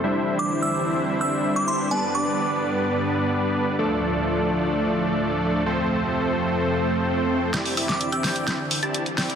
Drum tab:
HH |----------------|----------------|----------------|----------------|
SD |----------------|----------------|----------------|----------------|

HH |xooxxxoxx-oxxxox|
SD |o--o--o-o-----o-|